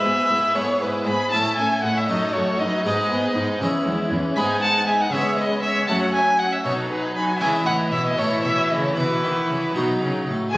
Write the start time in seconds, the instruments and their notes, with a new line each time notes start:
Already playing: violin section B4, violin E5
0.04 harpsichord G#2, cello section G#2, viola section B3, violin section G#4
0.30 cello section G#2, harpsichord G#2, viola section G#3, violin section E4
0.55 harpsichord G#2 B3 E4 B4, cello section G#2, viola section B3, violin section G#4 A4, violin C#5
0.81 cello section G#2, harpsichord G#2, viola section G#3, violin section E4 G#4, violin B4
1.06 cello section G#2, harpsichord G#2, viola section B3, violin section G#4 G#5, violin B5
1.32 cello section A2, harpsichord A2 C#4 E4 A4, viola section A3, violin section E4 E5, violin A5
1.57 cello section A2, harpsichord A2, viola section C#4, violin section A4 E5, violin G#5
1.83 cello section A2, harpsichord A2, viola section A3, violin section E4 D#5, violin F#5
1.96 violin section C#5, violin E5
2.08 cello section F#2, harpsichord F#2 A3 D#4 A4, viola section F#3, violin section D#4 A4, violin D#5
2.34 harpsichord F#2, cello section F#2, viola section A3, violin section F#4 A4, violin C#5
2.59 harpsichord F#2, cello section F#2, viola section F#3, violin section D#4 B4, violin D#5
2.84 cello section G#2, harpsichord G#2 G#3 B3 D#4 G#4, viola section G#3, violin section D#4 B4, violin D#5
3.10 cello section G#2, harpsichord G#2, viola section B3, violin section G#4
3.36 harpsichord G#2, cello section G#2, viola section G#3, violin section D#4
3.61 cello section E2, harpsichord E2 C#4 E4 G#4, viola section E3, violin section C#4
3.86 cello section E2, harpsichord E2, viola section G#3, violin section E4
4.11 cello section E2, harpsichord E2, viola section E3, violin section C#4
4.36 harpsichord G#2 G#3 B3 D#4 G#4, cello section G#2, viola section G#3, violin section D#4 G#5, violin B5
4.62 viola section G#3, violin section D#4 F#5, violin A5
4.87 viola section G#3, violin section D#4 E5, violin G#5
5.00 violin section D#5, violin F#5
5.12 cello section C#3, harpsichord C#3 B3 C#4 G#4, viola section G#3, violin section C#4 C#5, violin E5
5.37 viola section G#3, violin section C#4 B4, violin D#5
5.62 viola section G#3, violin section C#4 C#5, violin E5
5.88 cello section F#2, harpsichord F#2 A3 C#4 F#4, viola section F#3, violin section C#4 F#5, violin A5
6.13 viola section F#3, violin section C#4 E5, violin G#5
6.38 viola section F#3, violin section C#4 D#5, violin F#5
6.52 violin section C#5, violin E5
6.63 cello section B2, harpsichord B2 D#4 F#4, viola section F#3, violin section D#4 A4, violin C#5
6.89 viola section F#3, violin section D#4 G#4, violin B4
7.15 viola section F#3, violin section D#4 G#5, violin B5
7.40 cello section C#3, harpsichord C#3 G#3 C#4 E4, viola section E3, violin section E4 E5, violin G#5
7.66 cello section A2, harpsichord A2, violin section D#5, violin F#5
7.91 cello section B2, harpsichord B2, violin section C#5, violin E5
8.05 violin section B4, violin D#5
8.17 cello section A2, harpsichord A2 A3 C#4 E4, viola section E3, violin section E4 A4, violin C#5
8.43 cello section B2, harpsichord B2, violin section C#5, violin E5
8.69 cello section C#3, harpsichord C#3, violin section B4, violin D#5
8.83 violin section A4, violin C#5
8.95 cello section B2, harpsichord B2 E4, viola section E3, violin section E4 F#4, violin B4
9.22 cello section D#3, harpsichord D#3
9.48 cello section C#3, harpsichord C#3
9.74 harpsichord B2 D#4 F#4, cello section B2, viola section F#3, violin section D#4
10.01 cello section C#3, harpsichord C#3
10.27 cello section A2, harpsichord A2
10.53 double bass section E1, harpsichord E2, cello section E2, viola section G#3, violin section G#4 G#5, violin G#5